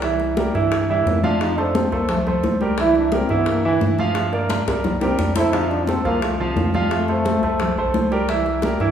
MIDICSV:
0, 0, Header, 1, 5, 480
1, 0, Start_track
1, 0, Tempo, 344037
1, 43, Time_signature, 4, 2, 24, 8
1, 12433, End_track
2, 0, Start_track
2, 0, Title_t, "Grand piano"
2, 0, Program_c, 0, 0
2, 41, Note_on_c, 0, 52, 74
2, 44, Note_on_c, 0, 64, 62
2, 51, Note_on_c, 0, 76, 74
2, 436, Note_off_c, 0, 52, 0
2, 438, Note_off_c, 0, 64, 0
2, 442, Note_off_c, 0, 76, 0
2, 525, Note_on_c, 0, 55, 72
2, 530, Note_on_c, 0, 67, 68
2, 533, Note_on_c, 0, 70, 68
2, 721, Note_off_c, 0, 55, 0
2, 725, Note_off_c, 0, 67, 0
2, 726, Note_off_c, 0, 70, 0
2, 764, Note_on_c, 0, 64, 81
2, 767, Note_on_c, 0, 52, 82
2, 770, Note_on_c, 0, 76, 75
2, 1158, Note_off_c, 0, 64, 0
2, 1159, Note_off_c, 0, 52, 0
2, 1161, Note_off_c, 0, 76, 0
2, 1253, Note_on_c, 0, 52, 76
2, 1262, Note_on_c, 0, 64, 79
2, 1263, Note_on_c, 0, 76, 80
2, 1643, Note_off_c, 0, 52, 0
2, 1648, Note_off_c, 0, 64, 0
2, 1649, Note_off_c, 0, 76, 0
2, 1722, Note_on_c, 0, 53, 88
2, 1728, Note_on_c, 0, 77, 90
2, 1731, Note_on_c, 0, 65, 90
2, 2116, Note_off_c, 0, 53, 0
2, 2120, Note_off_c, 0, 77, 0
2, 2122, Note_off_c, 0, 65, 0
2, 2199, Note_on_c, 0, 57, 69
2, 2204, Note_on_c, 0, 69, 75
2, 2204, Note_on_c, 0, 72, 75
2, 2595, Note_off_c, 0, 57, 0
2, 2598, Note_off_c, 0, 69, 0
2, 2598, Note_off_c, 0, 72, 0
2, 2680, Note_on_c, 0, 57, 78
2, 2683, Note_on_c, 0, 69, 77
2, 2686, Note_on_c, 0, 72, 73
2, 3075, Note_off_c, 0, 57, 0
2, 3077, Note_off_c, 0, 69, 0
2, 3079, Note_off_c, 0, 72, 0
2, 3162, Note_on_c, 0, 57, 74
2, 3170, Note_on_c, 0, 69, 76
2, 3178, Note_on_c, 0, 72, 76
2, 3557, Note_off_c, 0, 57, 0
2, 3561, Note_off_c, 0, 69, 0
2, 3566, Note_off_c, 0, 72, 0
2, 3643, Note_on_c, 0, 55, 75
2, 3648, Note_on_c, 0, 67, 78
2, 3658, Note_on_c, 0, 70, 78
2, 3840, Note_off_c, 0, 55, 0
2, 3843, Note_off_c, 0, 67, 0
2, 3849, Note_off_c, 0, 70, 0
2, 3894, Note_on_c, 0, 52, 79
2, 3897, Note_on_c, 0, 64, 78
2, 3900, Note_on_c, 0, 76, 70
2, 4283, Note_off_c, 0, 52, 0
2, 4285, Note_off_c, 0, 64, 0
2, 4287, Note_off_c, 0, 76, 0
2, 4367, Note_on_c, 0, 67, 67
2, 4368, Note_on_c, 0, 55, 66
2, 4376, Note_on_c, 0, 70, 77
2, 4563, Note_off_c, 0, 55, 0
2, 4563, Note_off_c, 0, 67, 0
2, 4568, Note_off_c, 0, 70, 0
2, 4599, Note_on_c, 0, 52, 80
2, 4607, Note_on_c, 0, 64, 84
2, 4613, Note_on_c, 0, 76, 75
2, 4995, Note_off_c, 0, 52, 0
2, 5000, Note_off_c, 0, 64, 0
2, 5003, Note_off_c, 0, 76, 0
2, 5091, Note_on_c, 0, 52, 77
2, 5093, Note_on_c, 0, 64, 83
2, 5095, Note_on_c, 0, 76, 82
2, 5482, Note_off_c, 0, 52, 0
2, 5483, Note_off_c, 0, 64, 0
2, 5484, Note_off_c, 0, 76, 0
2, 5568, Note_on_c, 0, 53, 84
2, 5573, Note_on_c, 0, 65, 91
2, 5577, Note_on_c, 0, 77, 92
2, 5960, Note_off_c, 0, 53, 0
2, 5963, Note_off_c, 0, 65, 0
2, 5965, Note_off_c, 0, 77, 0
2, 6036, Note_on_c, 0, 58, 75
2, 6038, Note_on_c, 0, 70, 75
2, 6045, Note_on_c, 0, 74, 67
2, 6433, Note_off_c, 0, 58, 0
2, 6434, Note_off_c, 0, 70, 0
2, 6438, Note_off_c, 0, 74, 0
2, 6530, Note_on_c, 0, 55, 78
2, 6531, Note_on_c, 0, 67, 66
2, 6537, Note_on_c, 0, 70, 74
2, 6921, Note_off_c, 0, 55, 0
2, 6922, Note_off_c, 0, 67, 0
2, 6925, Note_off_c, 0, 70, 0
2, 6998, Note_on_c, 0, 55, 75
2, 7006, Note_on_c, 0, 67, 81
2, 7007, Note_on_c, 0, 70, 77
2, 7394, Note_off_c, 0, 55, 0
2, 7399, Note_off_c, 0, 67, 0
2, 7399, Note_off_c, 0, 70, 0
2, 7478, Note_on_c, 0, 57, 77
2, 7485, Note_on_c, 0, 72, 76
2, 7486, Note_on_c, 0, 69, 75
2, 7677, Note_off_c, 0, 57, 0
2, 7682, Note_off_c, 0, 69, 0
2, 7682, Note_off_c, 0, 72, 0
2, 7720, Note_on_c, 0, 53, 73
2, 7731, Note_on_c, 0, 65, 75
2, 7731, Note_on_c, 0, 77, 69
2, 8115, Note_off_c, 0, 53, 0
2, 8122, Note_off_c, 0, 65, 0
2, 8122, Note_off_c, 0, 77, 0
2, 8204, Note_on_c, 0, 57, 71
2, 8205, Note_on_c, 0, 69, 72
2, 8208, Note_on_c, 0, 72, 65
2, 8401, Note_off_c, 0, 57, 0
2, 8402, Note_off_c, 0, 69, 0
2, 8404, Note_off_c, 0, 72, 0
2, 8439, Note_on_c, 0, 53, 76
2, 8443, Note_on_c, 0, 65, 80
2, 8450, Note_on_c, 0, 77, 81
2, 8835, Note_off_c, 0, 53, 0
2, 8837, Note_off_c, 0, 65, 0
2, 8841, Note_off_c, 0, 77, 0
2, 8933, Note_on_c, 0, 53, 90
2, 8938, Note_on_c, 0, 65, 84
2, 8938, Note_on_c, 0, 77, 81
2, 9323, Note_off_c, 0, 53, 0
2, 9326, Note_off_c, 0, 65, 0
2, 9326, Note_off_c, 0, 77, 0
2, 9407, Note_on_c, 0, 53, 82
2, 9412, Note_on_c, 0, 65, 94
2, 9421, Note_on_c, 0, 77, 87
2, 9800, Note_off_c, 0, 53, 0
2, 9802, Note_off_c, 0, 65, 0
2, 9808, Note_off_c, 0, 77, 0
2, 9889, Note_on_c, 0, 69, 70
2, 9891, Note_on_c, 0, 57, 69
2, 9895, Note_on_c, 0, 72, 74
2, 10281, Note_off_c, 0, 69, 0
2, 10282, Note_off_c, 0, 57, 0
2, 10284, Note_off_c, 0, 72, 0
2, 10365, Note_on_c, 0, 57, 80
2, 10368, Note_on_c, 0, 69, 68
2, 10374, Note_on_c, 0, 72, 71
2, 10759, Note_off_c, 0, 57, 0
2, 10760, Note_off_c, 0, 69, 0
2, 10764, Note_off_c, 0, 72, 0
2, 10854, Note_on_c, 0, 57, 72
2, 10860, Note_on_c, 0, 69, 72
2, 10861, Note_on_c, 0, 72, 82
2, 11244, Note_off_c, 0, 57, 0
2, 11247, Note_off_c, 0, 69, 0
2, 11248, Note_off_c, 0, 72, 0
2, 11322, Note_on_c, 0, 55, 86
2, 11327, Note_on_c, 0, 67, 84
2, 11332, Note_on_c, 0, 70, 86
2, 11520, Note_off_c, 0, 55, 0
2, 11523, Note_off_c, 0, 67, 0
2, 11526, Note_off_c, 0, 70, 0
2, 11568, Note_on_c, 0, 52, 74
2, 11573, Note_on_c, 0, 64, 77
2, 11576, Note_on_c, 0, 76, 81
2, 11960, Note_off_c, 0, 52, 0
2, 11963, Note_off_c, 0, 64, 0
2, 11965, Note_off_c, 0, 76, 0
2, 12046, Note_on_c, 0, 55, 70
2, 12050, Note_on_c, 0, 67, 69
2, 12053, Note_on_c, 0, 70, 74
2, 12242, Note_off_c, 0, 55, 0
2, 12245, Note_off_c, 0, 67, 0
2, 12246, Note_off_c, 0, 70, 0
2, 12287, Note_on_c, 0, 52, 82
2, 12291, Note_on_c, 0, 76, 83
2, 12294, Note_on_c, 0, 64, 80
2, 12433, Note_off_c, 0, 52, 0
2, 12433, Note_off_c, 0, 64, 0
2, 12433, Note_off_c, 0, 76, 0
2, 12433, End_track
3, 0, Start_track
3, 0, Title_t, "Trombone"
3, 0, Program_c, 1, 57
3, 1244, Note_on_c, 1, 55, 83
3, 1469, Note_on_c, 1, 58, 67
3, 1490, Note_off_c, 1, 55, 0
3, 1709, Note_off_c, 1, 58, 0
3, 1717, Note_on_c, 1, 62, 93
3, 1962, Note_on_c, 1, 63, 95
3, 1983, Note_off_c, 1, 62, 0
3, 2202, Note_on_c, 1, 62, 84
3, 2223, Note_off_c, 1, 63, 0
3, 2445, Note_on_c, 1, 60, 76
3, 2466, Note_off_c, 1, 62, 0
3, 2660, Note_off_c, 1, 60, 0
3, 2668, Note_on_c, 1, 58, 76
3, 2899, Note_off_c, 1, 58, 0
3, 2936, Note_on_c, 1, 57, 78
3, 3077, Note_off_c, 1, 57, 0
3, 3894, Note_on_c, 1, 64, 104
3, 4113, Note_off_c, 1, 64, 0
3, 4138, Note_on_c, 1, 62, 80
3, 4377, Note_on_c, 1, 60, 81
3, 4398, Note_off_c, 1, 62, 0
3, 4617, Note_on_c, 1, 59, 86
3, 4638, Note_off_c, 1, 60, 0
3, 4862, Note_on_c, 1, 58, 76
3, 4883, Note_off_c, 1, 59, 0
3, 5088, Note_off_c, 1, 58, 0
3, 5096, Note_on_c, 1, 52, 100
3, 5236, Note_off_c, 1, 52, 0
3, 7002, Note_on_c, 1, 60, 92
3, 7235, Note_on_c, 1, 62, 77
3, 7256, Note_off_c, 1, 60, 0
3, 7479, Note_off_c, 1, 62, 0
3, 7486, Note_on_c, 1, 64, 114
3, 7713, Note_on_c, 1, 63, 97
3, 7734, Note_off_c, 1, 64, 0
3, 7941, Note_off_c, 1, 63, 0
3, 7950, Note_on_c, 1, 62, 87
3, 8189, Note_on_c, 1, 60, 89
3, 8210, Note_off_c, 1, 62, 0
3, 8426, Note_off_c, 1, 60, 0
3, 8435, Note_on_c, 1, 58, 89
3, 8667, Note_on_c, 1, 57, 76
3, 8688, Note_off_c, 1, 58, 0
3, 8913, Note_on_c, 1, 48, 69
3, 8934, Note_off_c, 1, 57, 0
3, 9149, Note_on_c, 1, 51, 69
3, 9170, Note_off_c, 1, 48, 0
3, 9386, Note_on_c, 1, 55, 79
3, 9406, Note_off_c, 1, 51, 0
3, 9629, Note_on_c, 1, 57, 94
3, 9650, Note_off_c, 1, 55, 0
3, 11077, Note_off_c, 1, 57, 0
3, 12433, End_track
4, 0, Start_track
4, 0, Title_t, "Analog synth bass"
4, 0, Program_c, 2, 38
4, 0, Note_on_c, 2, 36, 82
4, 681, Note_off_c, 2, 36, 0
4, 758, Note_on_c, 2, 43, 88
4, 1431, Note_off_c, 2, 43, 0
4, 1475, Note_on_c, 2, 41, 87
4, 2600, Note_off_c, 2, 41, 0
4, 2680, Note_on_c, 2, 36, 93
4, 3352, Note_off_c, 2, 36, 0
4, 3392, Note_on_c, 2, 36, 91
4, 4518, Note_off_c, 2, 36, 0
4, 4597, Note_on_c, 2, 43, 88
4, 5270, Note_off_c, 2, 43, 0
4, 5318, Note_on_c, 2, 43, 89
4, 6441, Note_off_c, 2, 43, 0
4, 6522, Note_on_c, 2, 36, 91
4, 7193, Note_off_c, 2, 36, 0
4, 7230, Note_on_c, 2, 41, 87
4, 8358, Note_off_c, 2, 41, 0
4, 8434, Note_on_c, 2, 36, 84
4, 9109, Note_off_c, 2, 36, 0
4, 9156, Note_on_c, 2, 41, 92
4, 10281, Note_off_c, 2, 41, 0
4, 10353, Note_on_c, 2, 36, 90
4, 10805, Note_off_c, 2, 36, 0
4, 10842, Note_on_c, 2, 34, 75
4, 11066, Note_off_c, 2, 34, 0
4, 11079, Note_on_c, 2, 36, 90
4, 12202, Note_off_c, 2, 36, 0
4, 12275, Note_on_c, 2, 43, 95
4, 12433, Note_off_c, 2, 43, 0
4, 12433, End_track
5, 0, Start_track
5, 0, Title_t, "Drums"
5, 30, Note_on_c, 9, 60, 57
5, 35, Note_on_c, 9, 63, 30
5, 170, Note_off_c, 9, 60, 0
5, 175, Note_off_c, 9, 63, 0
5, 274, Note_on_c, 9, 60, 35
5, 279, Note_on_c, 9, 63, 31
5, 414, Note_off_c, 9, 60, 0
5, 419, Note_off_c, 9, 63, 0
5, 515, Note_on_c, 9, 63, 92
5, 516, Note_on_c, 9, 60, 57
5, 655, Note_off_c, 9, 63, 0
5, 656, Note_off_c, 9, 60, 0
5, 757, Note_on_c, 9, 63, 36
5, 767, Note_on_c, 9, 60, 34
5, 897, Note_off_c, 9, 63, 0
5, 906, Note_off_c, 9, 60, 0
5, 1000, Note_on_c, 9, 60, 70
5, 1002, Note_on_c, 9, 63, 34
5, 1139, Note_off_c, 9, 60, 0
5, 1141, Note_off_c, 9, 63, 0
5, 1240, Note_on_c, 9, 63, 33
5, 1379, Note_off_c, 9, 63, 0
5, 1483, Note_on_c, 9, 63, 68
5, 1491, Note_on_c, 9, 60, 31
5, 1491, Note_on_c, 9, 61, 73
5, 1623, Note_off_c, 9, 63, 0
5, 1630, Note_off_c, 9, 60, 0
5, 1630, Note_off_c, 9, 61, 0
5, 1724, Note_on_c, 9, 63, 84
5, 1727, Note_on_c, 9, 60, 31
5, 1863, Note_off_c, 9, 63, 0
5, 1867, Note_off_c, 9, 60, 0
5, 1967, Note_on_c, 9, 60, 62
5, 2107, Note_off_c, 9, 60, 0
5, 2207, Note_on_c, 9, 60, 35
5, 2207, Note_on_c, 9, 63, 31
5, 2346, Note_off_c, 9, 60, 0
5, 2346, Note_off_c, 9, 63, 0
5, 2439, Note_on_c, 9, 63, 100
5, 2443, Note_on_c, 9, 60, 60
5, 2578, Note_off_c, 9, 63, 0
5, 2582, Note_off_c, 9, 60, 0
5, 2683, Note_on_c, 9, 60, 34
5, 2823, Note_off_c, 9, 60, 0
5, 2912, Note_on_c, 9, 60, 65
5, 2919, Note_on_c, 9, 63, 31
5, 2919, Note_on_c, 9, 64, 73
5, 3052, Note_off_c, 9, 60, 0
5, 3058, Note_off_c, 9, 63, 0
5, 3058, Note_off_c, 9, 64, 0
5, 3163, Note_on_c, 9, 63, 31
5, 3163, Note_on_c, 9, 64, 72
5, 3303, Note_off_c, 9, 63, 0
5, 3303, Note_off_c, 9, 64, 0
5, 3397, Note_on_c, 9, 60, 34
5, 3397, Note_on_c, 9, 61, 74
5, 3405, Note_on_c, 9, 63, 76
5, 3536, Note_off_c, 9, 60, 0
5, 3536, Note_off_c, 9, 61, 0
5, 3545, Note_off_c, 9, 63, 0
5, 3636, Note_on_c, 9, 60, 33
5, 3639, Note_on_c, 9, 63, 72
5, 3776, Note_off_c, 9, 60, 0
5, 3778, Note_off_c, 9, 63, 0
5, 3875, Note_on_c, 9, 60, 70
5, 3884, Note_on_c, 9, 63, 36
5, 4014, Note_off_c, 9, 60, 0
5, 4024, Note_off_c, 9, 63, 0
5, 4117, Note_on_c, 9, 63, 32
5, 4118, Note_on_c, 9, 60, 30
5, 4257, Note_off_c, 9, 60, 0
5, 4257, Note_off_c, 9, 63, 0
5, 4350, Note_on_c, 9, 63, 97
5, 4357, Note_on_c, 9, 60, 61
5, 4490, Note_off_c, 9, 63, 0
5, 4496, Note_off_c, 9, 60, 0
5, 4592, Note_on_c, 9, 60, 33
5, 4594, Note_on_c, 9, 63, 38
5, 4731, Note_off_c, 9, 60, 0
5, 4733, Note_off_c, 9, 63, 0
5, 4829, Note_on_c, 9, 63, 33
5, 4831, Note_on_c, 9, 60, 67
5, 4968, Note_off_c, 9, 63, 0
5, 4970, Note_off_c, 9, 60, 0
5, 5075, Note_on_c, 9, 63, 35
5, 5215, Note_off_c, 9, 63, 0
5, 5312, Note_on_c, 9, 63, 65
5, 5320, Note_on_c, 9, 60, 36
5, 5320, Note_on_c, 9, 61, 77
5, 5452, Note_off_c, 9, 63, 0
5, 5460, Note_off_c, 9, 60, 0
5, 5460, Note_off_c, 9, 61, 0
5, 5559, Note_on_c, 9, 60, 32
5, 5562, Note_on_c, 9, 63, 82
5, 5699, Note_off_c, 9, 60, 0
5, 5701, Note_off_c, 9, 63, 0
5, 5790, Note_on_c, 9, 60, 66
5, 5804, Note_on_c, 9, 63, 35
5, 5929, Note_off_c, 9, 60, 0
5, 5944, Note_off_c, 9, 63, 0
5, 6039, Note_on_c, 9, 60, 33
5, 6043, Note_on_c, 9, 63, 33
5, 6179, Note_off_c, 9, 60, 0
5, 6182, Note_off_c, 9, 63, 0
5, 6271, Note_on_c, 9, 63, 100
5, 6278, Note_on_c, 9, 60, 88
5, 6410, Note_off_c, 9, 63, 0
5, 6417, Note_off_c, 9, 60, 0
5, 6526, Note_on_c, 9, 60, 89
5, 6666, Note_off_c, 9, 60, 0
5, 6757, Note_on_c, 9, 61, 74
5, 6764, Note_on_c, 9, 63, 34
5, 6764, Note_on_c, 9, 64, 82
5, 6896, Note_off_c, 9, 61, 0
5, 6904, Note_off_c, 9, 63, 0
5, 6904, Note_off_c, 9, 64, 0
5, 6995, Note_on_c, 9, 61, 94
5, 7003, Note_on_c, 9, 63, 31
5, 7134, Note_off_c, 9, 61, 0
5, 7142, Note_off_c, 9, 63, 0
5, 7236, Note_on_c, 9, 61, 77
5, 7245, Note_on_c, 9, 63, 64
5, 7376, Note_off_c, 9, 61, 0
5, 7384, Note_off_c, 9, 63, 0
5, 7473, Note_on_c, 9, 61, 86
5, 7612, Note_off_c, 9, 61, 0
5, 7719, Note_on_c, 9, 60, 66
5, 7724, Note_on_c, 9, 63, 34
5, 7859, Note_off_c, 9, 60, 0
5, 7864, Note_off_c, 9, 63, 0
5, 7965, Note_on_c, 9, 63, 33
5, 7968, Note_on_c, 9, 60, 34
5, 8105, Note_off_c, 9, 63, 0
5, 8107, Note_off_c, 9, 60, 0
5, 8196, Note_on_c, 9, 63, 90
5, 8212, Note_on_c, 9, 60, 53
5, 8335, Note_off_c, 9, 63, 0
5, 8352, Note_off_c, 9, 60, 0
5, 8444, Note_on_c, 9, 60, 33
5, 8584, Note_off_c, 9, 60, 0
5, 8675, Note_on_c, 9, 63, 33
5, 8683, Note_on_c, 9, 60, 67
5, 8815, Note_off_c, 9, 63, 0
5, 8823, Note_off_c, 9, 60, 0
5, 8918, Note_on_c, 9, 63, 36
5, 9058, Note_off_c, 9, 63, 0
5, 9158, Note_on_c, 9, 63, 81
5, 9163, Note_on_c, 9, 60, 33
5, 9163, Note_on_c, 9, 61, 74
5, 9298, Note_off_c, 9, 63, 0
5, 9303, Note_off_c, 9, 60, 0
5, 9303, Note_off_c, 9, 61, 0
5, 9404, Note_on_c, 9, 63, 82
5, 9409, Note_on_c, 9, 60, 31
5, 9543, Note_off_c, 9, 63, 0
5, 9549, Note_off_c, 9, 60, 0
5, 9643, Note_on_c, 9, 60, 61
5, 9783, Note_off_c, 9, 60, 0
5, 9882, Note_on_c, 9, 60, 33
5, 9887, Note_on_c, 9, 63, 32
5, 10021, Note_off_c, 9, 60, 0
5, 10027, Note_off_c, 9, 63, 0
5, 10121, Note_on_c, 9, 60, 57
5, 10125, Note_on_c, 9, 63, 99
5, 10261, Note_off_c, 9, 60, 0
5, 10265, Note_off_c, 9, 63, 0
5, 10366, Note_on_c, 9, 60, 35
5, 10505, Note_off_c, 9, 60, 0
5, 10599, Note_on_c, 9, 60, 69
5, 10622, Note_on_c, 9, 63, 34
5, 10622, Note_on_c, 9, 64, 76
5, 10739, Note_off_c, 9, 60, 0
5, 10761, Note_off_c, 9, 63, 0
5, 10761, Note_off_c, 9, 64, 0
5, 10851, Note_on_c, 9, 63, 35
5, 10990, Note_off_c, 9, 63, 0
5, 11078, Note_on_c, 9, 63, 80
5, 11082, Note_on_c, 9, 60, 33
5, 11082, Note_on_c, 9, 61, 78
5, 11218, Note_off_c, 9, 63, 0
5, 11221, Note_off_c, 9, 60, 0
5, 11221, Note_off_c, 9, 61, 0
5, 11326, Note_on_c, 9, 60, 33
5, 11465, Note_off_c, 9, 60, 0
5, 11563, Note_on_c, 9, 60, 64
5, 11564, Note_on_c, 9, 63, 38
5, 11702, Note_off_c, 9, 60, 0
5, 11703, Note_off_c, 9, 63, 0
5, 11798, Note_on_c, 9, 63, 34
5, 11804, Note_on_c, 9, 60, 34
5, 11937, Note_off_c, 9, 63, 0
5, 11944, Note_off_c, 9, 60, 0
5, 12030, Note_on_c, 9, 60, 59
5, 12042, Note_on_c, 9, 63, 105
5, 12170, Note_off_c, 9, 60, 0
5, 12181, Note_off_c, 9, 63, 0
5, 12278, Note_on_c, 9, 60, 37
5, 12287, Note_on_c, 9, 63, 38
5, 12418, Note_off_c, 9, 60, 0
5, 12427, Note_off_c, 9, 63, 0
5, 12433, End_track
0, 0, End_of_file